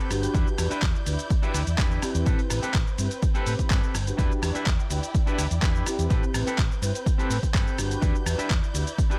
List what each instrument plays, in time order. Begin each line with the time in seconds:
Already playing: clean electric guitar C4 G4 A4 B4, violin section C4 B4 G6
0.10 fingered electric bass G1, analog polysynth D4 F#4 G4 B4, cross-stick, open hi-hat, cabasa
0.23 closed hi-hat, cabasa
0.34 fingered electric bass E2, clean electric guitar D4 E4 G4 B4, violin section E4 D5, kick, closed hi-hat, cabasa
0.47 cabasa
0.58 fingered electric bass E2, analog polysynth D4 F#4 G4 B4, muted clean electric guitar stroke, cross-stick, open hi-hat, cabasa
0.70 clean electric guitar D4 E4 G4 B4, closed hi-hat, cabasa
0.82 fingered electric bass E2, kick, clap, closed hi-hat, cabasa
0.94 muted clean electric guitar stroke, cabasa
1.06 fingered electric bass D2, analog polysynth D4 F#4 G4 B4, muted clean electric guitar stroke, open hi-hat, cabasa
1.19 closed hi-hat, cabasa
1.30 muted clean electric guitar stroke, kick, closed hi-hat, cabasa
1.42 clean electric guitar D4 E4 G4 B4, analog polysynth D4 F#4 G4 B4, closed hi-hat, cabasa
1.54 fingered electric bass D2, cross-stick, open hi-hat, cabasa
1.67 fingered electric bass E2, closed hi-hat, cabasa
1.78 clean electric guitar D4 E4 G4 B4, kick, clap, closed hi-hat, cabasa
1.91 cabasa
2.02 analog polysynth C4 E4 G4 B4, muted fingered electric bass stroke, cross-stick, open hi-hat, cabasa
2.15 fingered electric bass E2, closed hi-hat, cabasa
2.26 fingered electric bass A1, clean electric guitar C4 G4 A4 B4, violin section C4 B4, kick, closed hi-hat, cabasa
2.39 closed hi-hat, cabasa
2.50 fingered electric bass A1, analog polysynth C4 E4 G4 B4, muted clean electric guitar stroke, cross-stick, open hi-hat, cabasa
2.62 clean electric guitar C4 G4 A4 B4, closed hi-hat, cabasa
2.74 fingered electric bass A1, kick, clap, closed hi-hat, cabasa
2.87 muted clean electric guitar stroke, cabasa
2.98 fingered electric bass G2, analog polysynth C4 E4 G4 B4, muted clean electric guitar stroke, open hi-hat, cabasa
3.11 closed hi-hat, cabasa
3.22 muted clean electric guitar stroke, kick, closed hi-hat, cabasa
3.34 clean electric guitar C4 G4 A4 B4, analog polysynth C4 E4 G4 B4, closed hi-hat, cabasa
3.46 fingered electric bass A2, analog polysynth C4 E4 G4 B4, open hi-hat, cabasa
3.59 kick, closed hi-hat, cabasa
3.70 fingered electric bass G2, clean electric guitar C4 G4 A4 B4, analog polysynth C4 E4 G4 D5, kick, clap, closed hi-hat, cabasa
3.83 cabasa
3.94 fingered electric bass G1, cross-stick, open hi-hat, cabasa
4.07 analog polysynth D4 F#4 G4 B4, closed hi-hat, cabasa
4.18 fingered electric bass E2, clean electric guitar D4 E4 G4 B4, violin section E4 D5 G5, kick, closed hi-hat, cabasa
4.32 cabasa
4.42 fingered electric bass E2, analog polysynth D4 F#4 G4 B4, muted clean electric guitar stroke, cross-stick, open hi-hat, cabasa
4.55 clean electric guitar D4 E4 G4 B4, muted fingered electric bass stroke, closed hi-hat, cabasa
4.66 fingered electric bass E2, kick, clap, closed hi-hat, cabasa
4.78 muted clean electric guitar stroke, cabasa
4.90 fingered electric bass D2, analog polysynth D4 F#4 G4 B4, muted clean electric guitar stroke, open hi-hat, cabasa
5.03 closed hi-hat, cabasa
5.14 muted clean electric guitar stroke, kick, closed hi-hat, cabasa
5.27 clean electric guitar D4 E4 G4 B4, analog polysynth D4 F#4 G4 B4, closed hi-hat, cabasa
5.38 fingered electric bass D2, cross-stick, open hi-hat, cabasa
5.51 fingered electric bass E2, closed hi-hat, cabasa
5.62 fingered electric bass E2, clean electric guitar D4 E4 G4 B4, kick, clap, closed hi-hat, cabasa
5.75 cabasa
5.86 analog polysynth C4 E4 G4 B4, cross-stick, open hi-hat, cabasa
5.99 fingered electric bass E2, closed hi-hat, cabasa
6.10 fingered electric bass A1, clean electric guitar C4 G4 A4 B4, violin section C4 B4 G6, kick, closed hi-hat, cabasa
6.23 cabasa
6.34 fingered electric bass A1, analog polysynth C4 E4 G4 B4, muted clean electric guitar stroke, cross-stick, open hi-hat, cabasa
6.47 clean electric guitar C4 G4 A4 B4, closed hi-hat, cabasa
6.58 fingered electric bass A1, kick, clap, closed hi-hat, cabasa
6.71 muted clean electric guitar stroke, cabasa
6.82 fingered electric bass G2, analog polysynth C4 E4 G4 B4, muted clean electric guitar stroke, open hi-hat, cabasa
6.95 closed hi-hat, cabasa
7.06 muted clean electric guitar stroke, kick, closed hi-hat, cabasa
7.18 clean electric guitar C4 G4 A4 B4, analog polysynth C4 E4 G4 B4, closed hi-hat, cabasa
7.30 fingered electric bass A2, open hi-hat, cabasa
7.43 muted fingered electric bass stroke, kick, closed hi-hat, cabasa
7.53 fingered electric bass G2, clean electric guitar C4 G4 A4 B4, kick, clap, closed hi-hat, cabasa
7.67 cabasa
7.78 fingered electric bass G1, analog polysynth D4 F#4 G4 B4, cross-stick, open hi-hat, cabasa
7.91 closed hi-hat, cabasa
8.01 fingered electric bass E2, clean electric guitar D4 E4 G4 B4, violin section E4 D5, kick, closed hi-hat, cabasa
8.15 cabasa
8.26 fingered electric bass E2, analog polysynth D4 F#4 G4 B4, muted clean electric guitar stroke, cross-stick, open hi-hat, cabasa
8.38 clean electric guitar D4 E4 G4 B4, muted fingered electric bass stroke, closed hi-hat, cabasa
8.50 fingered electric bass E2, kick, clap, closed hi-hat, cabasa
8.62 muted clean electric guitar stroke, cabasa
8.74 fingered electric bass D2, analog polysynth D4 F#4 G4 B4, muted clean electric guitar stroke, open hi-hat, cabasa
8.87 closed hi-hat, cabasa
8.97 muted clean electric guitar stroke, kick, closed hi-hat, cabasa
9.10 clean electric guitar D4 E4 G4 B4, analog polysynth D4 F#4 G4 B4, closed hi-hat, cabasa